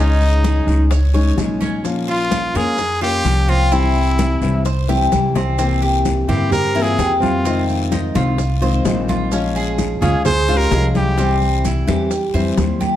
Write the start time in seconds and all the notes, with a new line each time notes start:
Already playing: C#2 C#3 G#3 C#4 D#4
0.00 D#4 G#4
0.21 high bongo, high conga, maracas
0.44 G#4, high bongo, high conga, short guiro, maracas
0.66 C#2 G#3 C#4 D#4 G#4, high bongo, short guiro, maracas
0.90 C#5, muted nylon-string guitar stroke, high bongo, high conga, long guiro, maracas
1.14 G#3 C#4 D#4 G#4 C#5, high conga, maracas
1.37 A#1 G#3 C#4 D#4 G#4, high bongo, low bongo, high conga, short guiro, maracas
1.61 C#4, high bongo, high conga, short guiro, maracas
1.84 F3 A#3 C#4 F4, high bongo, high conga, long guiro, maracas
2.08 F4, high bongo, high conga, maracas
2.31 high bongo, high conga, short guiro, maracas
2.54 F2 A#3 C#4 F4 G#4 A#4, high bongo, high conga, short guiro, maracas
2.78 muted nylon-string guitar stroke, high bongo, high conga, long guiro, maracas
3.01 A#3 C#4 F4 G4, high conga, maracas
3.25 C2 F3 A#3 C#4 F4, high bongo, low bongo, high conga, short guiro, maracas
3.48 C4 F4, high bongo, short guiro, maracas
3.71 C3 E3 G3 C4 E4, high bongo, high conga, long guiro, maracas
3.95 high bongo, high conga, maracas
4.18 E4, high bongo, high conga, short guiro, maracas
4.42 C2 E3 G3 C4 E4, high bongo, short guiro, maracas
4.65 C5, muted nylon-string guitar stroke, high bongo, high conga, long guiro, maracas
4.88 E3 G3 C4 E4 G4, high bongo, high conga, maracas
5.12 C2 E3 G3 C4 E4, high bongo, high conga, short guiro, maracas
5.35 C4, low bongo, short guiro, maracas
5.58 C3 E3 A#3 C4 E4, high bongo, high conga, long guiro, maracas
5.82 G4, high bongo, high conga, maracas
6.05 high bongo, high conga, short guiro, maracas
6.28 G2 E3 A#3 C4 E4 G4, high bongo, high conga, low conga, short guiro, maracas
6.51 G4 A#4, muted nylon-string guitar stroke, high bongo, high conga, low conga, long guiro, maracas
6.75 E3 A#3 C4 E4, high conga, maracas
6.82 F4 G#4
6.98 F2 E3 A#3 E4 G4, high bongo, low bongo, high conga, short guiro, maracas
7.20 C4 F4, high bongo, high conga, short guiro, maracas
7.45 C3 D#3 G#3 C4 F4, high bongo, high conga, long guiro, maracas
7.69 high conga, maracas
7.92 D#4, high bongo, high conga, short guiro, maracas
8.15 C2 D#3 G#3 C4 F4, high bongo, high conga, short guiro, maracas
8.38 muted nylon-string guitar stroke, high bongo, high conga, long guiro, maracas
8.61 D#3 G#3 C4 F4 C5, high bongo, high conga, maracas
8.85 A#1 D#3 G#3 C4 F4, high bongo, low bongo, high conga, short guiro, maracas
9.09 F4, high bongo, high conga, short guiro, maracas
9.32 F3 G#3 C#4 F4, high bongo, high conga, long guiro, maracas
9.55 G#4, high bongo, high conga, maracas
9.78 high bongo, high conga, short guiro, maracas
10.01 C#2 G#3 C#4 F4 G#4, high bongo, high conga, low conga, short guiro, maracas
10.25 G#4 C5, muted nylon-string guitar stroke, high bongo, high conga, low conga, long guiro, maracas
10.48 G#3 C#4 F4, high conga, maracas
10.57 G4 A#4
10.71 C2 F3 G#3 C#4 F4 G#4, high bongo, low bongo, high conga, short guiro, maracas
10.95 E4 G4, high bongo, high conga, short guiro, maracas
11.18 C3 E3 G3 C4 E4, high bongo, high conga, long guiro, maracas
11.41 high conga, maracas
11.65 E4, high bongo, high conga, short guiro, maracas
11.87 E2 E3 G3 C4 E4 G4, high bongo, high conga, short guiro, maracas
12.11 muted nylon-string guitar stroke, high bongo, high conga, long guiro, maracas
12.34 F2 E3 G3 C4 E4 C5, high bongo, high conga, maracas
12.57 D#2 G3 C4 E4, high bongo, low bongo, high conga, short guiro, maracas
12.81 G4, high bongo, high conga, short guiro, maracas